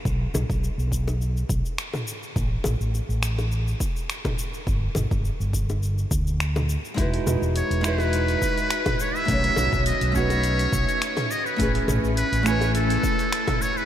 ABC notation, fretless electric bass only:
X:1
M:4/4
L:1/16
Q:"Swing 16ths" 1/4=104
K:E
V:1 name="Fretless electric bass" clef=bass
B,,, z B,,, B,,, z B,,,4 z B,,, z4 z | A,,, z A,,, A,,, z A,,,4 z6 z | =G,,, z G,,, G,,, z G,,,4 z =D,,4 z2 | E,,, z E,,, E,,, z E,,,4 z6 z |
B,,, z B,,, B,,, z B,,,4 z B,,, z4 z | A,,, z A,,, A,,, z A,,,4 z6 z |]